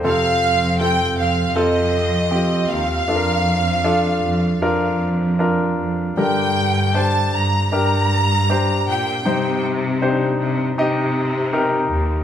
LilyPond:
<<
  \new Staff \with { instrumentName = "Violin section" } { \time 4/4 \key c \dorian \tempo 4 = 78 f''4 g''8 f''8 ees''4. f''8~ | f''2~ f''8 r4. | g''4 a''8 bes''8 bes''4. g''8~ | g''8 r2. r8 | }
  \new Staff \with { instrumentName = "Grand piano" } { \time 4/4 \key c \dorian << { c''16 r2. r8. | r1 | r1 | r1 | } \\ { <c' f' a'>4 <c' f' a'>4 <c' f' a'>4 <c' f' g'>4 | <d' f' a' bes'>4 <d' f' a'>4 <d' f' bes'>4 <d' f' bes'>4 | <d' g' bes'>4 <d' g' c''>4 <d' g' bes'>4 <d' g' c''>4 | <ees' g' c''>4 <d' ees' g' c''>4 <ees' g' ees''>4 <ees' g' bes'>4 | } >> }
  \new Staff \with { instrumentName = "Grand piano" } { \clef bass \time 4/4 \key c \dorian c4. r2 r8 | f4. r2 r8 | <g, d>4. r2 r8 | g,4. r2 r8 | }
  \new Staff \with { instrumentName = "Cello section" } { \clef bass \time 4/4 \key c \dorian f,4. f,8 f,4. ees,8 | f,4. f,8 f,4. f,8 | g,4. g,8 g,4. bes,8 | c4. c8 c4. ees,8 | }
>>